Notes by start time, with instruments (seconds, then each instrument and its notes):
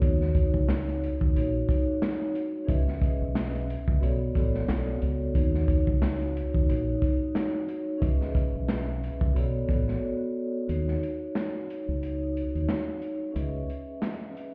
0.00 fingered electric bass D#2, vibraphone D#4 F#4 C#5, kick, closed hi-hat
0.21 snare
0.35 kick, closed hi-hat
0.54 fingered electric bass C#2, kick
0.69 snare, closed hi-hat
0.89 closed hi-hat
1.04 closed hi-hat
1.21 fingered electric bass D#2, kick
1.34 fingered electric bass A#1, vibraphone D#4 F#4 C#5, closed hi-hat
1.67 vibraphone D#4 F#4 C#5, kick, closed hi-hat
2.02 snare, closed hi-hat
2.35 closed hi-hat
2.64 vibraphone C#4 G#4 B4 D#5 E5
2.69 fingered electric bass C#2, kick, closed hi-hat
2.88 snare
3.02 kick, closed hi-hat
3.21 fingered electric bass B1
3.35 snare, closed hi-hat
3.55 closed hi-hat
3.70 closed hi-hat
3.88 fingered electric bass C#2, kick
3.99 fingered electric bass B1, vibraphone B3 F#4 A4 C#5 D5, closed hi-hat
4.34 fingered electric bass A1, vibraphone B3 F#4 A4 C#5 D5, kick, closed hi-hat
4.55 snare
4.68 fingered electric bass B1, snare, closed hi-hat
5.02 fingered electric bass C#2, closed hi-hat
5.33 fingered electric bass D#2, vibraphone D#4 F#4 C#5, kick, closed hi-hat
5.54 snare
5.68 kick, closed hi-hat
5.87 fingered electric bass C#2, kick
6.02 snare, closed hi-hat
6.22 closed hi-hat
6.37 closed hi-hat
6.54 fingered electric bass D#2, kick
6.67 fingered electric bass A#1, vibraphone D#4 F#4 C#5, closed hi-hat
7.00 vibraphone D#4 F#4 C#5, kick, closed hi-hat
7.35 snare, closed hi-hat
7.68 closed hi-hat
7.97 vibraphone C#4 G#4 B4 D#5 E5
8.02 fingered electric bass C#2, kick, closed hi-hat
8.21 snare
8.35 kick, closed hi-hat
8.55 fingered electric bass B1
8.68 snare, closed hi-hat
9.04 closed hi-hat
9.21 fingered electric bass C#2, kick
9.33 fingered electric bass B1, vibraphone B3 F#4 A4 C#5 D5, closed hi-hat
9.68 fingered electric bass A1, vibraphone B3 F#4 A4 C#5 D5, kick, closed hi-hat
9.88 snare
10.66 fingered electric bass D#2, vibraphone D#4 F#4 C#5, closed hi-hat
10.88 snare
11.03 closed hi-hat
11.35 snare, closed hi-hat
11.70 closed hi-hat
11.88 fingered electric bass C#2
12.00 vibraphone D#4 F#4 C#5, closed hi-hat
12.33 vibraphone D#4 F#4 C#5, closed hi-hat
12.55 fingered electric bass D#2, closed hi-hat
12.69 snare, closed hi-hat
13.02 closed hi-hat
13.31 vibraphone C#4 G#4 B4 D#5 E5
13.36 fingered electric bass C#2, closed hi-hat
13.70 closed hi-hat
14.02 snare, closed hi-hat
14.37 closed hi-hat